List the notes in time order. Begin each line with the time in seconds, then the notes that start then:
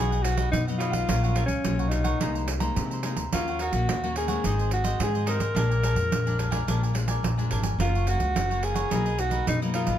Already playing: B1 B2 F#3 B3 D#4 G#4 B4
0.00 D#5 F#5
0.11 B4 D#5 F#5, pandeiro
0.23 F#3 B3 D#4 F#4, muted cavaquinho stroke, pandeiro
0.37 B4 D#5 F#5, pandeiro
0.51 F#2 B2 D#4, pandeiro
0.67 F#3 B3 D#4 B4 D#5 F#5, pandeiro
0.78 F4 F#4 B4 D#5 F#5, pandeiro
0.91 B1 B4 D#5 F#5, pandeiro
1.07 A#1 A#2 F#3 C#4 F4 A#4 C#5 F#5, pandeiro
1.23 F#3 C#4 F4 A#4 C#5 F#5, pandeiro
1.35 F4 A#4 C#5 F#5, pandeiro
1.46 C#4, muted cavaquinho stroke, pandeiro
1.64 B1 A#2 F#3 C#4 F4, pandeiro
1.79 A#4 C#5 F#5, pandeiro
1.89 D#4 F4 A#4 C#5 F#5, pandeiro
2.04 A#4 C#5 F#5, pandeiro
2.20 C2 C3 G#3 A#3 D#4 G#4 C5 A#5, pandeiro
2.35 C5 A#5, pandeiro
2.48 muted cavaquinho stroke, pandeiro
2.60 G#3 A#3 D#4 C5 A#5, pandeiro
2.76 C3, pandeiro
2.91 C5 A#5, pandeiro
3.03 G#3 A#3 D#4 G#4 C5 A#5, pandeiro
3.16 D2 C5 A#5, pandeiro
3.33 D#2 D#3 A#3 C#4 D#4 F4 F#4 A#4 C#5 F#5, pandeiro
3.48 A#4 C#5 F#5, pandeiro
3.59 D#4 F#4 A#4 C#5 F#5, pandeiro
3.72 A#1 A#3 C#4 F#4, pandeiro
3.89 A#2, pandeiro
4.03 A#3 C#4 F#4 A#4 C#5 F#5, pandeiro
4.16 D#4 G#4 A#4 C#5 F#5, pandeiro
4.28 D#3 G#3 C4 A#4 C#5 F#5, pandeiro
4.44 G#1 G#2 D#4 G#4 C5 D#5, pandeiro
4.59 G#4 C5 D#5, pandeiro
4.71 F#4, muted cavaquinho stroke, pandeiro
4.84 D#3 G#3 C4 G#4 C5 D#5, pandeiro
5.00 G#2 D#3 G#4, pandeiro
5.15 G#4 C5 D#5, pandeiro
5.26 D#3 G#3 C4 D#4 G#4 A#4 C5 D#5, pandeiro
5.39 G#1 G#4 C5 D#5, pandeiro
5.55 A#1 A#2 F3 G#3 D4 A#4 D5 G#5, pandeiro
5.71 A#4 D5 G#5, pandeiro
5.82 F3 G#3 D4 A#4 D5 G#5, pandeiro
5.95 F2, muted cavaquinho stroke, pandeiro
6.11 A#1 F2, pandeiro
6.26 F3 G#3 D4 A#4 D5 G#5, pandeiro
6.39 D4 A#4 D5 G#5, pandeiro
6.51 F3 G#3 D4 A#4 D5 G#5, pandeiro
6.67 A#1 A#2 F3 G#3 D4 A#4 D5 G#5, pandeiro
6.83 A#4 D5 G#5, pandeiro
6.94 F3 G#3 D4, muted cavaquinho stroke, pandeiro
7.08 A#4 D5 G#5, pandeiro
7.23 A#1 F2, pandeiro
7.37 F3 G#3 D4 A#4 D5 G#5, pandeiro
7.50 G#1 D4 A#4 D5 G#5, pandeiro
7.63 A#4 D5 G#5, pandeiro
7.79 F#1 F#2 F3 A#3 C#4 F4 A#4 C#5 F#5, pandeiro
7.95 A#4 C#5 F#5, pandeiro
8.06 F3 A#3 C#4 F4 F#4 A#4 C#5 F#5, pandeiro
8.19 C#2, muted cavaquinho stroke, pandeiro
8.34 F#1 C#3, pandeiro
8.49 F3 A#3 C#4 A#4 C#5 F#5, pandeiro
8.62 F4 G#4 A#4 C#5 F#5, pandeiro
8.74 A#4 C#5 F#5, pandeiro
8.90 B1 B2 F#3 A#3 D#4 A#4 B4 D#5, pandeiro
9.06 A#4 B4 D#5, pandeiro
9.18 F#3 A#3 D#4 F#4, muted cavaquinho stroke, pandeiro
9.30 A#4 B4 D#5, pandeiro
9.47 F#2 B2 D#4, pandeiro
9.62 F#3 A#3 D#4 A#4 B4 D#5, pandeiro
9.74 D#4 F4 A#4 B4 D#5, pandeiro
9.87 A1 A#4 B4 D#5, pandeiro